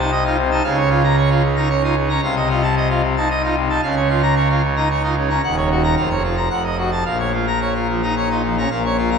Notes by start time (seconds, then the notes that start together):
Already playing: C2
0.00 D#4 A5
0.12 D#5
0.25 D#4 F4
0.38 C3
0.51 D#4 A5
0.64 C#2 C#3 F5
0.77 C#5
0.90 F4
1.04 A#5
1.17 C#5
1.30 F4
1.44 C#3
1.57 D#4 A#5
1.70 C#5
1.83 D#4 F4
1.97 C#3
2.09 C#4 A#5
2.22 C2 C3 F5
2.37 D#5
2.50 F4
2.63 A5
2.77 D#5
2.90 F4
3.04 C3
3.17 D#4 A5
3.31 D#5
3.44 D#4 F4
3.57 C3
3.70 D#4 A5
3.83 C#2 C#3 F5
3.96 C#5
4.10 F4
4.23 A#5
4.37 C#5
4.50 F4
4.64 C#3
4.77 D#4 A#5
4.90 C#5
5.04 D#4 F4
5.17 C#3
5.30 C#4 A#5
5.43 D#1 D#2 F#5
5.57 C#5
5.71 F#4
5.84 A#5
5.97 F1 F2 F5
6.10 C#5
6.24 F4
6.37 A#5
6.50 F1 F2 F#5
6.64 D#5
6.78 F#4
6.92 A5
7.05 A#1 A#2 F5
7.19 C#5
7.33 F4
7.47 A#5
7.61 C#5
7.75 F4
7.89 F3
8.03 D#4 A#5
8.17 C#5
8.30 D#4 F4
8.44 F3
8.58 C#4 A#5
8.71 A#1 A#2 F5
8.85 C#5
8.98 F4
9.11 A#5